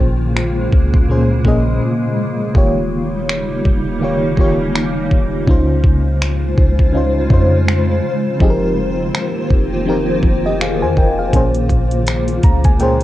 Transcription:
0.00 0.69 A#1 loud
0.00 1.00 A#2 medium
0.00 2.52 C#3 medium
0.00 2.52 G#3 medium
0.00 1.01 A#3 medium
0.00 2.52 A#3 medium
0.00 1.02 C#4 medium
0.00 2.51 F4 medium
0.00 1.02 G#4 medium
0.00 1.06 C5 medium
0.37 finger snap loud
0.72 1.43 C#2 loud
0.72 kick medium
0.94 kick medium
1.08 1.43 A#2 medium
1.08 1.43 A#3 medium
1.08 1.44 C#4 medium
1.08 1.44 G#4 medium
1.12 1.45 C5 medium
1.44 1.80 A#1 loud
1.44 2.49 A#2 medium
1.44 2.49 A#3 medium
1.44 2.50 C#4 medium
1.44 2.50 G#4 medium
1.44 kick medium
1.48 2.51 D#5 medium
2.54 3.61 D#1 loud
2.54 5.45 C#3 medium
2.54 3.93 D#3 medium
2.54 5.45 G3 medium
2.54 3.94 A#3 medium
2.54 5.45 A#3 medium
2.54 5.45 D#4 medium
2.54 3.94 F4 medium
2.54 3.95 G4 medium
2.54 kick loud
2.58 3.95 C#5 medium
3.29 finger snap loud
3.65 4.35 D#1 loud
3.65 kick medium
4.00 4.35 D#3 medium
4.00 4.36 A#3 medium
4.00 4.36 F4 medium
4.00 4.37 G4 medium
4.04 4.38 C#5 medium
4.37 5.08 D#1 loud
4.37 5.42 D#3 medium
4.37 5.42 A#3 medium
4.37 5.43 F4 medium
4.37 5.43 G4 medium
4.37 kick medium
4.41 5.44 C#5 medium
4.76 finger snap loud
5.11 5.46 D#1 medium
5.11 kick medium
5.46 5.83 C#2 loud
5.46 6.86 C#3 medium
5.46 8.37 C#3 medium
5.46 8.37 G#3 medium
5.46 6.86 C#4 medium
5.46 6.87 D#4 medium
5.46 8.37 F4 medium
5.46 6.87 F4 medium
5.46 11.29 C5 medium
5.46 kick loud
5.51 6.88 C5 medium
5.84 6.54 C#2 medium
5.84 kick medium
6.22 finger snap loud
6.58 7.28 C#2 loud
6.58 kick medium
6.79 kick medium
6.93 7.28 C#3 medium
6.93 7.29 C#4 medium
6.93 7.29 D#4 medium
6.93 7.30 F4 medium
6.97 7.30 C5 medium
7.29 8.01 F2 loud
7.29 8.34 C#3 medium
7.29 8.35 C#4 medium
7.29 8.35 D#4 medium
7.29 8.36 F4 medium
7.29 kick medium
7.33 8.36 C5 medium
7.68 finger snap loud
8.39 9.11 F1 loud
8.39 11.30 D#3 medium
8.39 9.79 F3 medium
8.39 11.30 A#3 medium
8.39 9.79 C4 medium
8.39 9.80 D#4 medium
8.39 11.30 F4 medium
8.39 9.80 G4 medium
8.39 kick loud
8.44 8.49 G#4 medium
8.50 9.84 A#4 medium
9.15 finger snap loud
9.51 10.21 F1 loud
9.51 kick loud
9.86 10.21 F3 medium
9.86 10.21 C4 medium
9.86 10.22 D#4 medium
9.86 10.22 G4 medium
9.90 10.23 A#4 medium
10.23 10.83 F1 loud
10.23 kick medium
10.46 10.60 G4 medium
10.46 10.60 D#5 medium
10.61 10.81 G#4 medium
10.61 10.81 F5 medium
10.61 finger snap loud
10.82 10.96 F2 medium
10.82 10.97 C5 medium
10.82 10.96 G#5 medium
10.97 11.32 F1 medium
10.97 11.17 A#4 medium
10.97 11.17 G5 medium
10.97 kick medium
11.19 11.34 G#4 soft
11.19 11.53 F5 medium
11.32 11.68 A#1 loud
11.32 12.71 A#2 medium
11.32 13.04 C#3 medium
11.32 13.04 G#3 medium
11.32 12.72 A#3 medium
11.32 13.04 A#3 medium
11.32 12.72 C#4 medium
11.32 13.04 F4 medium
11.32 12.73 G#4 medium
11.32 kick loud
11.32 closed hi-hat medium
11.36 12.73 C5 medium
11.54 closed hi-hat soft
11.69 12.40 A#1 loud
11.69 kick medium
11.69 closed hi-hat medium
11.91 closed hi-hat soft
12.06 finger snap loud
12.06 closed hi-hat medium
12.28 closed hi-hat soft
12.43 13.04 C#2 loud
12.43 12.63 A#5 medium
12.43 kick medium
12.43 closed hi-hat medium
12.64 12.79 G#5 medium
12.64 kick medium
12.64 closed hi-hat medium
12.79 13.04 A#2 medium
12.79 13.04 A#3 medium
12.79 13.04 C#4 medium
12.79 13.04 G#4 medium
12.79 13.04 G5 medium
12.79 closed hi-hat medium
12.83 13.04 C5 medium
13.01 closed hi-hat soft

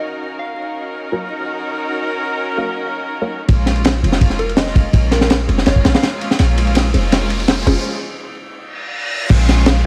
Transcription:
0.00 0.55 C#4 medium
0.00 0.55 D#4 medium
0.00 0.55 F#4 medium
0.00 0.55 A#4 medium
0.00 3.49 A#4 medium
0.39 0.90 F5 medium
0.57 3.46 C#4 medium
0.57 3.46 D#4 medium
0.57 3.46 F#4 medium
0.57 3.46 A#4 medium
1.12 1.21 F#4 medium
1.12 1.21 A#4 medium
1.12 1.21 C#5 medium
1.12 1.21 F5 medium
2.58 2.67 F#4 medium
2.58 2.67 A#4 medium
2.58 2.67 C#5 medium
2.58 2.67 F5 medium
3.21 3.30 F#4 medium
3.21 3.30 A#4 medium
3.21 3.30 C#5 medium
3.21 3.30 F5 medium
3.48 4.02 A#1 loud
3.48 4.01 G#3 medium
3.48 4.01 A#3 medium
3.48 4.01 C#4 medium
3.48 4.01 F4 loud
3.48 kick loud
3.48 ride medium
3.48 riser medium
3.66 snare soft
3.66 ride medium
3.76 ride soft
3.84 snare loud
3.84 ride medium
4.02 4.74 F1 medium
4.02 4.56 G#3 medium
4.02 4.56 A#3 medium
4.02 4.56 C#4 medium
4.02 4.12 C#4 medium
4.02 4.56 F4 loud
4.02 4.12 F4 medium
4.02 4.12 G#4 medium
4.02 4.12 C5 medium
4.02 ride medium
4.12 snare medium
4.21 kick medium
4.21 ride medium
4.30 snare soft
4.39 4.56 A#4 medium
4.39 ride medium
4.49 ride soft
4.57 4.65 G#3 medium
4.57 4.65 A#3 medium
4.57 4.65 C#4 medium
4.57 4.64 F4 medium
4.57 5.09 D#5 medium
4.57 snare loud
4.57 ride medium
4.67 4.92 G#3 medium
4.67 4.92 A#3 medium
4.67 4.92 C#4 medium
4.67 4.92 F4 medium
4.67 snare soft
4.75 4.84 F1 loud
4.75 kick medium
4.75 ride medium
4.93 5.47 A#1 loud
4.93 5.46 G#3 medium
4.93 5.46 A#3 medium
4.93 5.46 C#4 medium
4.93 5.46 F4 medium
4.93 kick loud
4.93 ride medium
5.11 5.34 A#4 medium
5.11 snare soft
5.11 ride medium
5.21 snare medium
5.30 snare loud
5.30 ride medium
5.48 5.65 F1 medium
5.48 6.01 G#3 medium
5.48 6.01 A#3 medium
5.48 5.57 C#4 medium
5.48 6.01 C#4 medium
5.48 5.57 F4 medium
5.48 6.01 F4 loud
5.48 5.57 G#4 medium
5.48 5.57 C5 loud
5.48 ride medium
5.58 snare soft
5.66 5.83 F1 medium
5.66 5.89 C#5 medium
5.66 snare medium
5.66 ride medium
5.76 kick medium
5.85 5.93 A#1 medium
5.85 snare medium
5.85 ride medium
5.94 6.21 F5 medium
5.94 snare loud
6.03 6.10 G#3 medium
6.03 6.10 A#3 medium
6.03 6.10 C#4 medium
6.03 6.10 F4 medium
6.03 snare medium
6.03 ride medium
6.12 6.37 G#3 medium
6.12 6.37 A#3 medium
6.12 6.37 C#4 medium
6.12 6.37 F4 loud
6.21 ride medium
6.31 snare medium
6.39 6.92 A#1 loud
6.39 6.92 G#3 medium
6.39 6.92 A#3 medium
6.39 6.92 C#4 medium
6.39 6.92 F4 medium
6.39 snare soft
6.39 ride medium
6.58 ride medium
6.67 ride soft
6.75 snare medium
6.75 ride medium
6.94 7.65 F1 medium
6.94 7.47 G#3 medium
6.94 7.47 A#3 medium
6.94 7.03 C#4 medium
6.94 7.47 C#4 medium
6.94 7.03 F4 medium
6.94 7.47 F4 loud
6.94 7.03 G#4 medium
6.94 7.03 C5 medium
6.94 ride medium
7.12 snare medium
7.12 ride medium
7.30 ride medium
7.40 ride soft
7.48 7.55 G#3 medium
7.48 7.55 A#3 medium
7.48 7.55 C#4 medium
7.48 7.55 F4 medium
7.48 snare medium
7.48 ride medium
7.58 7.83 G#3 medium
7.58 7.83 A#3 medium
7.58 7.83 C#4 medium
7.58 7.83 F4 loud
7.66 7.75 F1 medium
7.66 7.76 C#4 medium
7.66 7.76 F4 medium
7.66 7.76 G#4 medium
7.66 7.76 C5 medium
7.66 ride medium
8.57 reverse cymbal medium
9.30 9.83 A#1 loud
9.30 9.83 G#3 medium
9.30 9.83 A#3 medium
9.30 9.83 C#4 medium
9.30 9.83 F4 loud
9.30 kick loud
9.30 crash medium
9.30 ride medium
9.30 downlifter medium
9.49 snare soft
9.49 ride medium
9.58 ride soft
9.66 snare loud
9.66 ride medium

